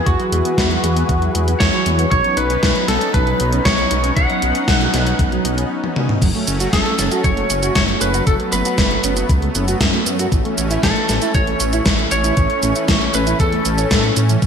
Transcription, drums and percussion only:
0.07 kick, closed hi-hat
0.20 closed hi-hat
0.32 closed hi-hat
0.45 closed hi-hat
0.58 kick, snare, closed hi-hat
0.71 closed hi-hat
0.84 closed hi-hat
0.97 closed hi-hat
1.09 kick, closed hi-hat
1.22 closed hi-hat
1.35 closed hi-hat
1.48 closed hi-hat
1.60 kick, snare, closed hi-hat
1.73 closed hi-hat
1.86 closed hi-hat
1.99 closed hi-hat
2.12 kick, closed hi-hat
2.24 closed hi-hat
2.37 closed hi-hat
2.50 closed hi-hat
2.63 kick, snare, closed hi-hat
2.76 closed hi-hat
2.88 snare, closed hi-hat
3.01 closed hi-hat
3.14 kick, closed hi-hat
3.27 closed hi-hat
3.40 closed hi-hat
3.53 closed hi-hat
3.65 kick, snare, closed hi-hat
3.78 closed hi-hat
3.91 closed hi-hat
4.04 closed hi-hat
4.17 kick, closed hi-hat
4.30 closed hi-hat
4.42 closed hi-hat
4.55 closed hi-hat
4.68 kick, snare, closed hi-hat
4.81 closed hi-hat
4.94 snare, closed hi-hat
5.07 closed hi-hat
5.19 kick, closed hi-hat
5.32 closed hi-hat
5.45 closed hi-hat
5.58 closed hi-hat
5.84 high tom
5.96 mid tom
6.09 mid tom
6.22 kick, closed hi-hat, crash, shaker
6.35 closed hi-hat
6.48 closed hi-hat, shaker
6.60 closed hi-hat, shaker
6.73 kick, snare, closed hi-hat, shaker
6.86 closed hi-hat
6.99 snare, closed hi-hat, shaker
7.12 closed hi-hat, shaker
7.24 kick, closed hi-hat, shaker
7.37 closed hi-hat
7.50 closed hi-hat, shaker
7.63 closed hi-hat, shaker
7.75 kick, snare, closed hi-hat, shaker
7.88 closed hi-hat
8.01 closed hi-hat, shaker
8.14 closed hi-hat, shaker
8.27 kick, closed hi-hat, shaker
8.40 closed hi-hat
8.52 closed hi-hat, shaker
8.65 closed hi-hat, shaker
8.78 kick, snare, closed hi-hat, shaker
8.91 closed hi-hat
9.04 closed hi-hat, shaker
9.17 closed hi-hat, shaker
9.29 kick, closed hi-hat, shaker
9.42 closed hi-hat
9.55 closed hi-hat, shaker
9.68 closed hi-hat, shaker
9.81 kick, snare, closed hi-hat, shaker
9.94 closed hi-hat
10.06 closed hi-hat, shaker
10.19 closed hi-hat, shaker
10.32 kick, closed hi-hat, shaker
10.45 closed hi-hat
10.58 closed hi-hat, shaker
10.71 closed hi-hat, shaker
10.83 kick, snare, closed hi-hat, shaker
10.96 closed hi-hat
11.09 snare, closed hi-hat, shaker
11.22 closed hi-hat, shaker
11.34 kick, closed hi-hat, shaker
11.47 closed hi-hat
11.60 closed hi-hat, shaker
11.73 closed hi-hat, shaker
11.86 kick, snare, closed hi-hat, shaker
11.99 closed hi-hat
12.11 closed hi-hat, shaker
12.24 closed hi-hat, shaker
12.37 kick, closed hi-hat, shaker
12.50 closed hi-hat
12.63 closed hi-hat, shaker
12.76 closed hi-hat, shaker
12.88 kick, snare, closed hi-hat, shaker
13.01 closed hi-hat
13.14 closed hi-hat, shaker
13.27 closed hi-hat, shaker
13.40 kick, closed hi-hat, shaker
13.52 closed hi-hat
13.65 closed hi-hat, shaker
13.78 closed hi-hat, shaker
13.91 kick, snare, closed hi-hat, shaker
14.04 closed hi-hat
14.17 closed hi-hat, shaker
14.29 closed hi-hat, shaker
14.42 kick, closed hi-hat, shaker

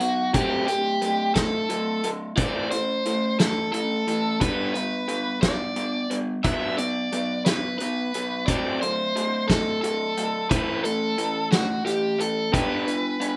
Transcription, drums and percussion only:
0.00 closed hi-hat
0.34 kick, closed hi-hat
0.68 closed hi-hat
1.02 closed hi-hat
1.35 kick, snare, closed hi-hat
1.70 closed hi-hat
2.04 closed hi-hat
2.37 kick, closed hi-hat
2.72 closed hi-hat
3.06 closed hi-hat
3.40 snare, closed hi-hat
3.74 closed hi-hat
4.08 closed hi-hat
4.41 kick, closed hi-hat
4.75 closed hi-hat
5.08 closed hi-hat
5.43 kick, snare, closed hi-hat
5.76 closed hi-hat
6.11 closed hi-hat
6.44 kick, closed hi-hat
6.78 closed hi-hat
7.12 closed hi-hat
7.46 snare, closed hi-hat
7.80 closed hi-hat
8.14 closed hi-hat
8.48 kick, closed hi-hat
8.82 closed hi-hat
9.17 closed hi-hat
9.50 kick, snare, closed hi-hat
9.84 closed hi-hat
10.17 closed hi-hat
10.51 kick, closed hi-hat
10.85 closed hi-hat
11.18 closed hi-hat
11.52 snare, closed hi-hat
11.87 closed hi-hat
12.20 closed hi-hat
12.54 kick, closed hi-hat
12.88 closed hi-hat
13.21 closed hi-hat

